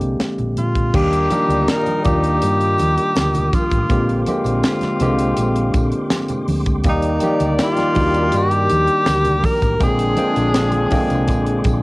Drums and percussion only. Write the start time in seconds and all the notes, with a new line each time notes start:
0.01 closed hi-hat
0.20 snare, closed hi-hat, high conga
0.38 closed hi-hat, low conga
0.57 closed hi-hat, muted conga, high conga
0.76 kick, closed hi-hat
0.94 kick, crash, tambourine, muted conga, low conga
1.13 closed hi-hat
1.31 closed hi-hat, tambourine, muted conga, high conga
1.50 closed hi-hat, tambourine
1.68 snare, closed hi-hat, tambourine, muted conga
1.86 closed hi-hat, high conga
2.04 kick, closed hi-hat, tambourine, muted conga, high conga, low conga
2.24 closed hi-hat
2.42 closed hi-hat, tambourine
2.61 closed hi-hat
2.78 closed hi-hat, tambourine, muted conga, high conga
2.98 closed hi-hat
3.16 snare, closed hi-hat, tambourine, muted conga, high conga
3.34 closed hi-hat, tambourine, low conga
3.53 kick, closed hi-hat, tambourine, muted conga, high conga
3.70 kick, closed hi-hat, tambourine
3.89 kick, closed hi-hat, tambourine, low conga
4.09 closed hi-hat
4.26 closed hi-hat, tambourine, muted conga, high conga
4.44 closed hi-hat, tambourine
4.63 snare, closed hi-hat, tambourine, muted conga
4.81 snare, closed hi-hat, high conga
4.99 closed hi-hat, tambourine, high conga, low conga
5.19 closed hi-hat, tambourine
5.36 closed hi-hat, tambourine, muted conga
5.56 closed hi-hat
5.74 kick, closed hi-hat, tambourine, muted conga, high conga
5.91 closed hi-hat
6.10 snare, closed hi-hat, tambourine, high conga
6.28 closed hi-hat, tambourine, low conga
6.48 open hi-hat, tambourine, muted conga, high conga
6.66 kick, closed hi-hat, tambourine
6.84 kick, closed hi-hat, tambourine, muted conga, low conga
7.02 closed hi-hat
7.20 closed hi-hat, tambourine, muted conga, high conga
7.40 closed hi-hat, tambourine
7.59 snare, closed hi-hat, tambourine, muted conga
7.76 snare, closed hi-hat, high conga
7.95 kick, open hi-hat, tambourine, muted conga, high conga, low conga
8.14 closed hi-hat, tambourine
8.32 closed hi-hat, tambourine, muted conga
8.51 closed hi-hat
8.70 closed hi-hat, tambourine, muted conga, high conga
8.88 closed hi-hat
9.06 snare, closed hi-hat, tambourine, muted conga, high conga
9.24 closed hi-hat, tambourine, low conga
9.43 kick, open hi-hat, tambourine, muted conga, high conga
9.62 kick, closed hi-hat, tambourine
9.80 kick, closed hi-hat, tambourine, muted conga, low conga
9.99 closed hi-hat
10.17 closed hi-hat, tambourine, muted conga, high conga
10.36 closed hi-hat, tambourine
10.54 snare, closed hi-hat, tambourine, muted conga
10.72 closed hi-hat, high conga
10.91 kick, open hi-hat, tambourine, high conga, low conga
11.10 closed hi-hat, tambourine
11.28 kick, closed hi-hat, tambourine
11.47 closed hi-hat
11.64 kick, closed hi-hat, tambourine, muted conga, high conga